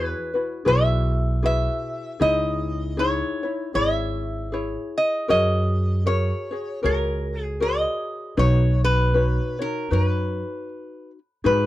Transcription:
Already playing: E2 E4 F#4 G#4 B4
0.34 E4 F#4 B4
0.65 B1 E4 F#4 G#4 B4 E5
1.43 E4 F#4 G#4 B4 E5
2.20 C#2 D#4 E4 G#4 C#5 D#5
2.97 D#4 E4 G#4 C#5
3.43 D#4 E4 C#5
3.74 G#1 E4 G#4 C#5 E5
4.52 E4 G#4 C#5
4.98 D#5
5.28 F#2 F#4 G#4 A#4 C#5 D#5
6.06 F#4 G#4 A#4 C#5
6.51 F#4 G#4 C#5
6.83 C#2 F#4 G#4 A#4 C#5
7.42 G#4
7.60 F#4 G#4 A#4 C#5 D#5
8.37 B1 D#4 F#4 B4 C#5
8.84 B4
9.14 D#4 F#4 B4 C#5
9.59 D#4 F#4 A#4 C#5
9.90 F#2 D#4 F#4 A#4 B4 C#5
10.04 B4
11.44 G#2 D#4 F#4 G#4 B4

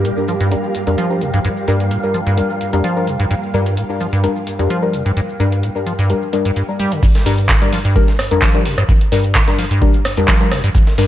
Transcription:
Already playing: G3 G4 A#4 F5
0.05 A2, closed hi-hat, shaker
0.17 G3 D4 A#4, shaker
0.28 F3, shaker
0.40 G2, closed hi-hat, shaker
0.51 F2 G3 D4 A#4, closed hi-hat, shaker
0.64 shaker
0.75 closed hi-hat, shaker
0.87 F2 G3 D4 A#4, closed hi-hat, shaker
0.98 F3, closed hi-hat, shaker
1.10 G3 D4 A#4, shaker
1.21 C3, closed hi-hat, shaker
1.34 G2, closed hi-hat, shaker
1.45 G2, closed hi-hat, shaker
1.57 shaker
1.68 G2 G3 D4 A#4, closed hi-hat, shaker
1.80 closed hi-hat, shaker
1.91 A2, closed hi-hat, shaker
2.03 G3 D4 A#4, shaker
2.14 F3, closed hi-hat, shaker
2.27 G2, closed hi-hat, shaker
2.38 F2 G3 D4 A#4, closed hi-hat, shaker
2.50 shaker
2.61 closed hi-hat, shaker
2.73 F2 G3 D4 A#4, closed hi-hat, shaker
2.84 F3, closed hi-hat, shaker
2.96 G3 D4 A#4, shaker
3.07 C3, closed hi-hat, shaker
3.20 G2, closed hi-hat, shaker
3.31 G2, closed hi-hat, shaker
3.43 shaker
3.54 G2 G3 D4 A#4, shaker
3.66 closed hi-hat, shaker
3.77 A2, closed hi-hat, shaker
3.89 G3 D4 A#4, shaker
4.00 F3, shaker
4.13 G2, closed hi-hat, shaker
4.24 F2 G3 D4 A#4, closed hi-hat, shaker
4.36 shaker
4.47 closed hi-hat, shaker
4.59 F2 G3 D4 A#4, closed hi-hat, shaker
4.70 F3, closed hi-hat, shaker
4.82 G3 D4 A#4, shaker
4.93 C3, closed hi-hat, shaker
5.06 G2, closed hi-hat, shaker
5.17 G2, closed hi-hat, shaker
5.29 shaker
5.40 G2 G3 D4 A#4, closed hi-hat, shaker
5.52 closed hi-hat, shaker
5.63 A2, closed hi-hat, shaker
5.76 G3 D4 A#4, shaker
5.86 F3, closed hi-hat, shaker
5.99 G2, closed hi-hat, shaker
6.10 F2 G3 D4 A#4, closed hi-hat, shaker
6.22 shaker
6.33 G3 D4 A#4, closed hi-hat, shaker
6.45 G2, closed hi-hat, shaker
6.56 G2, closed hi-hat, shaker
6.69 G3 D4 A#4, shaker
6.79 G3, closed hi-hat, shaker
6.92 D3, closed hi-hat, shaker
7.03 G2, kick, closed hi-hat, crash, shaker
7.15 snare, closed hi-hat, shaker
7.26 G2 G3 D4 A#4, closed hi-hat, open hi-hat, shaker
7.38 closed hi-hat, shaker
7.49 A2, kick, snare, clap, closed hi-hat, shaker
7.61 G3 D4 A#4, closed hi-hat, shaker
7.72 F3, closed hi-hat, open hi-hat, shaker
7.85 G2, closed hi-hat, shaker
7.96 F2 G3 D4 A#4, kick, closed hi-hat, shaker
8.08 snare, closed hi-hat, shaker
8.19 cross-stick, closed hi-hat, open hi-hat, shaker
8.31 F2 G3 D4 A#4, closed hi-hat, shaker
8.42 F3, kick, snare, clap, closed hi-hat, shaker
8.54 G3 D4 A#4, closed hi-hat, shaker
8.66 C3, closed hi-hat, open hi-hat, shaker
8.78 G2, cross-stick, closed hi-hat, shaker
8.89 G2, kick, closed hi-hat, shaker
9.01 closed hi-hat, shaker
9.12 G2 G3 D4 A#4, closed hi-hat, open hi-hat, shaker
9.24 closed hi-hat, shaker
9.35 A2, kick, snare, clap, open hi-hat, shaker
9.48 G3 D4 A#4, snare, closed hi-hat, shaker
9.58 F3, closed hi-hat, open hi-hat, shaker
9.71 G2, closed hi-hat, shaker
9.82 F2 G3 D4 A#4, kick, closed hi-hat, shaker
9.94 closed hi-hat, shaker
10.05 cross-stick, closed hi-hat, open hi-hat, shaker
10.17 F2 G3 D4 A#4, closed hi-hat, shaker
10.28 F3, kick, snare, clap, closed hi-hat, shaker
10.40 G3 D4 A#4, closed hi-hat, shaker
10.51 C3, cross-stick, closed hi-hat, open hi-hat, shaker
10.64 G2, closed hi-hat, shaker
10.75 G2, kick, closed hi-hat, shaker
10.87 snare, closed hi-hat, shaker
10.98 G2 G3 D4 A#4, closed hi-hat, open hi-hat, shaker

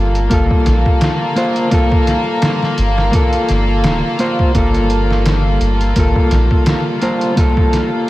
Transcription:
Already playing: G1 G3 A#3 F4 A4
0.15 closed hi-hat
0.30 G1 A#3 F4 A4, kick, closed hi-hat
0.51 kick
0.66 A#1, snare, closed hi-hat
0.86 kick
1.01 snare, closed hi-hat
1.36 A#3 F4 C5, closed hi-hat
1.56 closed hi-hat
1.71 A#3 F4 A4, kick, closed hi-hat
1.92 kick
2.07 snare, closed hi-hat
2.42 snare, closed hi-hat
2.63 snare
2.78 G1, closed hi-hat
2.98 snare
3.12 A#3 F4 A4, kick, closed hi-hat
3.33 closed hi-hat
3.49 G1, snare, closed hi-hat
3.84 D1, snare, closed hi-hat
4.19 A#3 F4 C5, closed hi-hat
4.39 kick
4.55 G1 A#3 F4 A4, kick, closed hi-hat
4.74 closed hi-hat
4.90 closed hi-hat
5.11 snare
5.26 snare, closed hi-hat
5.60 G1, closed hi-hat
5.81 closed hi-hat
5.96 G1 A#3 F4 A4, kick, closed hi-hat
6.16 kick
6.31 A#1, snare, closed hi-hat
6.51 kick
6.66 snare, closed hi-hat
7.02 A#3 F4 C5, closed hi-hat
7.21 closed hi-hat
7.36 A#3 F4 A4, kick, closed hi-hat
7.57 kick
7.73 snare, closed hi-hat

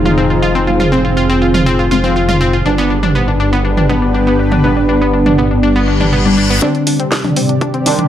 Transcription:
Already playing: F1 D#3 F3 G#3 C4 D#4 F4 G#4 C5
0.05 F4, mid tom
0.18 C4
0.30 F4
0.42 F4
0.55 C4
0.67 F3 G#3 C4 F4
0.80 F4, mid tom
0.92 C4
1.05 F4
1.17 F4
1.30 C4
1.42 F4
1.54 F4, mid tom
1.66 C4
1.79 F4
1.91 F3 G#3 C4 F4
2.04 C4
2.16 F4
2.29 F4, mid tom
2.41 C4
2.53 F4
2.65 G1 G3 B3 D4 G4 B4
2.78 B3
2.90 D4
3.03 D4, mid tom
3.08 G4
3.15 B3
3.28 D4
3.40 D4
3.53 B3
3.65 D4
3.77 D4, mid tom
3.89 G3 B3 D4
4.02 D4
4.14 D4 B4
4.27 B3
4.39 D4
4.52 D4, mid tom
4.64 G3 B3 D4
4.77 D4
4.89 B3 D4
5.01 B3
5.14 D4
5.26 D4, mid tom
5.38 B3
5.51 D4
5.63 D4, reverse cymbal
5.76 B3
5.88 G3 D4
6.00 D4, mid tom
6.13 B3
6.25 G3 B3 D4
6.37 D4
6.50 B3
6.62 C3 D3 D#3 G3 C4 D4 G4 D5, kick, closed hi-hat, riser
6.75 D4, closed hi-hat
6.82 C5
6.87 D4, open hi-hat
7.00 C4, closed hi-hat
7.12 D4, kick, snare, closed hi-hat
7.24 D4, closed hi-hat, mid tom
7.36 C4, open hi-hat
7.49 D4, closed hi-hat
7.61 D4, kick, closed hi-hat
7.74 C4, closed hi-hat
7.86 C3 D#3 C4 D4, open hi-hat
7.99 D4, closed hi-hat, mid tom

